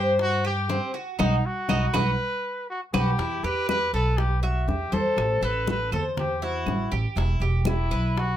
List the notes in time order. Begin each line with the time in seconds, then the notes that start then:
Already playing: G2 G4 C5
0.19 F#4, high bongo, high conga
0.45 G4, high bongo, high conga, claves
0.69 C4, high bongo, low bongo, high conga
0.94 F#4, high bongo
1.19 B1 D#4 F#4 B4, low bongo, high conga, claves
1.46 F#4
1.68 B1 D#4 F#4 B4, low bongo, high conga, claves
1.94 B1 D#4 F#4 B4, low bongo, high conga, claves
2.70 F#4
2.93 B1 D#4 F#4 G4 B4, low bongo, high conga, claves
3.18 E2 E4, high bongo
3.43 E2 G4 B4, high bongo, high conga
3.69 B4, high bongo, high conga, claves
3.93 B1 A4 B4, high conga
4.17 G4, high bongo, high conga
4.42 F#4 E5, high bongo, high conga, claves
4.68 E2 G4, high bongo, low bongo, high conga
4.92 E2 A4 C5, high bongo, high conga
5.17 A1, high bongo, high conga, claves
5.41 A1 A4 B4, high bongo, high conga
5.67 B4, high bongo, high conga
5.92 E2 A4 C5, high conga, low conga, claves
6.17 G4, high bongo, high conga, low conga
6.42 E4 F#4, high bongo, high conga
6.66 A1, high bongo, low bongo, high conga, claves
6.92 A1 G4, high bongo, high conga
7.16 E1 E4, high bongo, high conga
7.40 E1 G4, high bongo, high conga
7.65 E4, high bongo, high conga, claves
7.91 B1 B4, high conga
8.16 F#4, high bongo, high conga